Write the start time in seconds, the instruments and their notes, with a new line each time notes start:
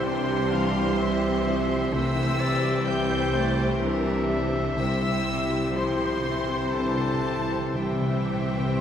Already playing: grand piano C2 E4 G4, double bass section C2, cello section C3, viola section E3, french horn section G3 C4, clarinet C5, violin section C6
0.03 viola section G3, grand piano C4, violin section D4 C5, oboe G5
0.29 grand piano G4
0.51 grand piano E3, oboe F5
0.77 grand piano G4
0.98 viola section E3 G3, grand piano C4, violin section C4, oboe E5
1.21 grand piano G4
1.45 viola section F3, grand piano E4
1.69 grand piano G4
1.90 grand piano C2, double bass section C2, cello section C3, french horn section E3 C4, viola section E3 A3, violin section C4 C5 E6, oboe C5
1.95 clarinet E5
2.16 grand piano E4
2.39 viola section G3, grand piano C4, oboe D5
2.62 grand piano G4
2.86 viola section E3 G3, grand piano C4, violin section C5 G6, oboe E5, clarinet G5
3.10 grand piano G4
3.34 viola section A3, grand piano E4, oboe D5
3.57 grand piano G4
3.81 viola section G3, grand piano C4, violin section D4 A#4, oboe E5
4.04 grand piano G4
4.29 grand piano E4, violin section C5
4.53 grand piano G4
4.76 grand piano C2, double bass section C2, cello section C3, timpani C3, viola section G3, french horn section C4 E4, violin section C4 E6, clarinet E5
5.01 timpani C3, grand piano E4
5.08 timpani C3
5.22 timpani C3, grand piano C4
5.26 viola section G3
5.49 grand piano G4
5.60 timpani C3
5.67 timpani C3
5.74 timpani C3, viola section F3, grand piano C4, oboe C5, violin section C5 C6, clarinet C5
5.78 violin section C4
5.83 timpani C3
5.91 timpani C3
5.97 grand piano G4
6.07 timpani C3
6.14 timpani C3
6.21 timpani C3, grand piano E4
6.25 timpani C3, viola section E3
6.36 timpani C3
6.44 timpani C3, grand piano G4
6.51 timpani C3
6.58 timpani C3
6.67 timpani C3
6.73 viola section E3, grand piano C4, violin section D4 A5, clarinet A4
6.83 timpani C3
6.90 timpani C3
6.98 grand piano G4
7.05 timpani C3
7.14 timpani C3
7.22 timpani C3, violin section C4, grand piano E4
7.38 timpani C3
7.45 timpani C3, grand piano G4
7.54 timpani C3
7.62 timpani C3
7.70 timpani C3
7.75 grand piano C2, double bass section C2, cello section C3, timpani C3, french horn section E3 C4, viola section E3 G3, violin section C4 C5 G5, clarinet G4, oboe E5
7.86 timpani C3
7.94 timpani C3
8.02 timpani C3, grand piano E4
8.11 timpani C3
8.19 timpani C3
8.29 grand piano C4
8.35 timpani C3
8.43 timpani C3
8.51 timpani C3, grand piano G4
8.60 timpani C3
8.67 timpani C3
8.76 timpani C3